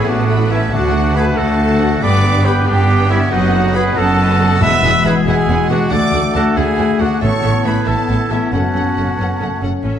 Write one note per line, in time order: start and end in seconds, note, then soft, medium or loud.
0.00 0.74 A2 medium
0.00 2.04 A3 soft
0.00 0.75 B3 medium
0.00 0.74 E4 soft
0.00 0.10 G#4 medium
0.00 0.29 A4 soft
0.00 0.74 C#5 soft
0.00 0.75 E5 soft
0.05 0.65 A1 medium
0.05 0.65 A2 medium
0.05 0.28 B3 soft
0.05 0.50 B3 soft
0.05 0.50 D4 medium
0.05 0.28 B4 medium
0.05 0.51 F#5 medium
0.05 0.29 A5 soft
0.09 0.50 F#4 medium
0.27 0.48 A3 soft
0.27 0.48 A4 soft
0.27 1.14 A4 soft
0.27 0.49 B5 soft
0.48 0.71 B3 soft
0.48 0.58 B3 medium
0.48 0.72 C#4 medium
0.48 0.58 E4 medium
0.48 0.60 E4 medium
0.48 0.71 B4 soft
0.48 0.72 E5 medium
0.48 0.70 A5 soft
0.71 1.30 D2 medium
0.71 2.04 D3 medium
0.71 2.05 A3 medium
0.71 1.16 D4 medium
0.71 0.92 F#4 medium
0.71 1.18 F#4 medium
0.71 0.92 A4 soft
0.71 1.16 F#5 medium
0.71 2.04 F#5 soft
0.71 0.92 A5 soft
0.93 1.15 D4 soft
0.93 3.10 D4 soft
0.93 1.15 F#4 soft
0.93 1.15 F#5 medium
1.14 1.24 A3 medium
1.14 1.24 F#4 soft
1.14 1.37 F#4 soft
1.14 1.26 G#4 medium
1.14 1.38 A4 soft
1.14 1.38 B4 medium
1.14 1.36 A5 soft
1.14 1.24 B5 medium
1.36 1.95 D2 medium
1.36 1.59 D4 soft
1.36 2.04 F#4 medium
1.36 1.59 F#4 soft
1.36 2.02 A4 medium
1.36 3.33 D5 medium
1.36 1.58 F#5 medium
1.36 2.01 A5 medium
1.57 1.80 F#4 soft
1.57 1.80 A4 soft
1.57 1.78 A5 soft
1.80 1.89 A3 medium
1.80 2.03 D4 soft
1.80 2.04 F#4 soft
1.80 1.89 F#4 medium
1.80 2.03 F#4 soft
1.80 2.02 F#5 soft
2.00 2.60 G1 medium
2.00 3.33 G2 medium
2.00 2.59 G2 medium
2.00 4.62 B3 medium
2.00 2.23 B3 medium
2.00 2.47 B4 medium
2.00 2.23 B4 soft
2.00 2.47 D5 medium
2.00 2.21 G5 medium
2.00 3.32 G5 soft
2.00 2.45 D6 medium
2.21 3.53 B3 soft
2.21 2.46 D4 soft
2.21 2.46 G4 soft
2.21 2.44 D5 medium
2.44 2.53 B3 medium
2.44 2.68 B3 soft
2.44 2.52 G4 medium
2.44 2.68 G4 medium
2.44 2.66 B4 medium
2.44 2.68 B4 soft
2.44 2.66 G5 soft
2.44 2.54 B5 medium
2.66 3.24 G1 medium
2.66 3.24 G2 medium
2.66 3.09 D4 medium
2.66 2.89 D4 soft
2.66 3.09 G4 medium
2.66 2.89 G4 soft
2.66 3.74 B4 soft
2.66 2.88 D5 soft
2.66 3.09 G5 medium
2.89 3.09 B3 soft
2.89 3.09 B4 soft
2.89 3.09 G5 soft
3.09 3.18 B3 medium
3.09 3.31 C#4 medium
3.09 3.32 D4 medium
3.09 3.34 D4 soft
3.09 3.19 E4 medium
3.09 3.32 G4 medium
3.09 3.18 G4 medium
3.09 3.32 D5 medium
3.09 3.32 E5 medium
3.31 3.89 F#1 medium
3.31 3.89 F#2 medium
3.31 4.63 F#2 medium
3.31 3.74 D#4 medium
3.31 3.76 F#4 medium
3.31 3.53 F#4 medium
3.31 3.53 B4 medium
3.31 3.52 D#5 medium
3.31 3.75 F#5 medium
3.31 4.59 F#5 medium
3.53 4.82 B3 soft
3.53 3.75 D#4 medium
3.53 3.75 A4 medium
3.53 3.75 F#5 medium
3.73 3.83 B3 medium
3.73 3.96 F#4 soft
3.73 3.83 F#4 medium
3.73 3.94 G#4 medium
3.73 3.96 B4 soft
3.73 3.99 B4 medium
3.73 4.16 B4 medium
3.73 3.97 D#5 medium
3.73 3.81 B5 medium
3.95 4.54 F#1 medium
3.95 4.53 F#2 medium
3.95 4.18 D#4 medium
3.95 4.38 D#4 medium
3.95 4.59 F#4 medium
3.95 4.18 A4 medium
3.95 4.61 A4 medium
3.95 4.60 A5 medium
4.00 4.20 F#5 medium
4.18 4.38 F#4 soft
4.18 5.26 B4 soft
4.18 4.38 B4 soft
4.18 4.40 D#5 soft
4.40 4.47 B3 medium
4.40 4.63 D#4 soft
4.40 4.61 D#4 medium
4.40 4.47 F#4 medium
4.40 4.61 A4 soft
4.40 4.62 F#5 medium
4.60 4.70 E1 medium
4.60 5.22 E2 medium
4.60 4.70 E2 medium
4.60 5.92 E3 medium
4.60 5.86 G#3 medium
4.60 5.22 G#3 medium
4.60 4.69 B3 medium
4.60 7.17 F#4 medium
4.60 4.69 G#4 medium
4.60 5.08 B4 medium
4.60 5.04 E5 loud
4.60 5.22 F#5 medium
4.60 4.72 F#5 medium
4.60 5.04 E6 medium
4.82 4.91 E1 medium
4.82 4.92 E2 medium
4.82 4.90 B3 medium
4.82 5.93 B3 soft
4.82 4.91 G#4 medium
4.82 4.94 F#5 medium
5.04 5.14 E1 medium
5.04 5.14 E2 medium
5.04 5.12 B3 medium
5.04 5.12 G#4 soft
5.04 5.48 G#4 soft
5.04 5.27 G#4 medium
5.04 5.15 B4 medium
5.04 5.14 F#5 medium
5.04 5.12 B5 medium
5.26 5.34 E1 medium
5.26 5.36 E2 medium
5.26 5.93 G#3 medium
5.26 5.34 B3 medium
5.26 5.69 E4 medium
5.26 5.34 G#4 medium
5.26 5.69 G#4 medium
5.26 5.93 B4 medium
5.26 5.91 F#5 medium
5.26 5.37 F#5 medium
5.26 5.68 G#5 medium
5.48 5.56 E1 medium
5.48 5.57 E2 medium
5.48 5.57 B3 soft
5.48 5.56 G#4 medium
5.48 5.58 F#5 medium
5.69 5.77 E1 medium
5.69 5.79 E2 medium
5.69 5.78 B3 medium
5.69 5.91 D4 medium
5.69 5.93 F#4 medium
5.69 6.98 F#4 soft
5.69 5.78 G#4 medium
5.69 5.91 F#5 medium
5.69 5.79 F#5 medium
5.91 5.99 D2 medium
5.91 6.00 D2 medium
5.91 7.23 D3 medium
5.91 7.18 A3 medium
5.91 7.21 A3 medium
5.91 5.99 D4 medium
5.91 5.99 A4 medium
5.91 6.34 A4 medium
5.91 6.35 D5 medium
5.91 5.99 F#5 medium
5.91 6.96 F#5 soft
5.91 6.34 D6 medium
6.12 6.21 D2 medium
6.12 6.22 D2 medium
6.12 6.21 D4 soft
6.12 7.23 D4 soft
6.12 6.21 A4 soft
6.12 6.20 F#5 medium
6.34 6.43 D2 medium
6.34 6.43 D4 medium
6.34 6.58 F#4 medium
6.34 6.76 A4 medium
6.34 6.43 A4 soft
6.34 6.59 A4 medium
6.34 6.44 F#5 soft
6.34 6.43 A5 medium
6.56 6.65 D2 medium
6.56 6.65 D4 soft
6.56 7.03 E4 medium
6.56 7.01 G#4 medium
6.56 6.65 A4 soft
6.56 7.23 D5 soft
6.56 6.65 F#5 medium
6.56 7.00 G#5 medium
6.77 6.86 D2 medium
6.77 6.87 D2 medium
6.77 6.86 D4 soft
6.77 6.86 A4 soft
6.77 6.85 F#5 soft
6.99 7.08 D2 medium
6.99 7.09 D2 medium
6.99 7.09 D4 soft
6.99 7.20 D4 medium
6.99 7.23 F#4 soft
6.99 7.21 F#4 medium
6.99 7.09 A4 soft
6.99 7.07 F#5 soft
6.99 7.22 F#5 medium
7.20 7.31 A1 medium
7.20 8.54 A2 medium
7.20 7.83 A2 medium
7.20 7.30 A2 medium
7.20 9.14 B3 soft
7.20 7.69 B3 medium
7.20 7.31 B3 soft
7.20 8.50 E4 soft
7.20 7.63 A4 medium
7.20 7.32 A4 soft
7.20 7.67 C#5 medium
7.20 7.30 E5 soft
7.20 7.87 A5 soft
7.20 7.65 C#6 medium
7.43 7.53 A1 soft
7.43 7.52 A2 soft
7.43 8.55 B3 soft
7.43 7.52 B3 soft
7.43 7.52 A4 soft
7.43 7.51 E5 soft
7.64 7.74 A1 soft
7.64 7.73 A2 medium
7.64 7.75 B3 soft
7.64 7.89 G#4 medium
7.64 8.09 A4 soft
7.64 7.75 A4 soft
7.64 7.89 B4 medium
7.64 7.73 E5 soft
7.64 7.87 B5 soft
7.86 7.96 A1 soft
7.86 7.95 A2 soft
7.86 8.55 B3 soft
7.86 7.95 B3 soft
7.86 8.33 E4 medium
7.86 8.33 A4 medium
7.86 7.96 A4 soft
7.86 8.55 B4 soft
7.86 7.94 E5 soft
7.86 8.30 A5 medium
7.86 8.52 A5 soft
8.08 8.18 A1 soft
8.08 8.16 A2 soft
8.08 8.19 B3 soft
8.08 8.20 A4 soft
8.08 8.17 E5 soft
8.31 8.39 A1 soft
8.31 8.39 A2 soft
8.31 8.41 B3 soft
8.31 8.52 C#4 soft
8.31 8.53 E4 medium
8.31 8.55 E4 soft
8.31 8.40 A4 soft
8.31 8.53 E5 soft
8.31 8.39 E5 soft
8.52 8.61 F#1 soft
8.52 8.61 F#2 soft
8.52 9.87 F#2 soft
8.52 8.60 C#4 soft
8.52 9.13 C#4 soft
8.52 9.61 C#4 soft
8.52 9.63 C#4 soft
8.52 9.61 F#4 medium
8.52 8.61 A4 soft
8.52 9.61 F#5 soft
8.52 8.62 F#5 soft
8.52 9.61 A5 soft
8.75 8.84 F#1 soft
8.75 8.83 F#2 soft
8.75 9.99 C#4 soft
8.75 8.84 C#4 soft
8.75 8.83 A4 soft
8.75 8.84 F#5 soft
8.97 9.06 F#1 soft
8.97 9.06 F#2 soft
8.97 9.06 C#4 soft
8.97 9.40 A4 soft
8.97 9.05 A4 soft
8.97 9.06 F#5 soft
9.18 9.27 F#1 soft
9.18 9.27 F#2 soft
9.18 9.39 B3 soft
9.18 9.28 C#4 soft
9.18 9.28 A4 soft
9.18 9.99 C#5 soft
9.18 9.29 F#5 soft
9.40 9.49 F#1 soft
9.40 9.48 F#2 soft
9.40 9.63 A3 soft
9.40 9.48 C#4 soft
9.40 9.48 A4 soft
9.40 9.99 A4 soft
9.40 9.51 F#5 soft
9.61 9.71 F#1 soft
9.61 9.70 F#2 soft
9.61 9.69 C#4 soft
9.61 9.84 C#4 soft
9.61 9.87 F#4 soft
9.61 9.69 A4 soft
9.61 9.73 F#5 soft
9.83 9.92 A1 soft
9.83 9.91 A2 soft
9.83 9.99 A2 soft
9.83 9.99 C#4 soft
9.83 9.99 A4 soft
9.83 9.99 E5 soft